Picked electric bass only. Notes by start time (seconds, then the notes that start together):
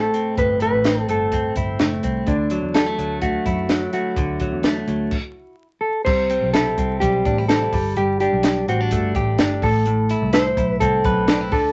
0.37 G1
0.73 A1
1.09 G1
1.56 G1
1.79 F#1
2.03 C2
2.27 D2
2.62 E2
2.98 D2
3.46 F#2
4.17 D2
4.52 E2
4.88 D2
6.06 C2
6.42 B1
6.78 C2
7.01 B1
7.25 A1
7.73 G1
7.96 G1
8.33 B1
8.68 A1
8.91 G1
9.15 A1
9.39 G1
9.62 A1
10.22 C2
10.57 B1
10.81 C2
11.05 B1
11.52 D2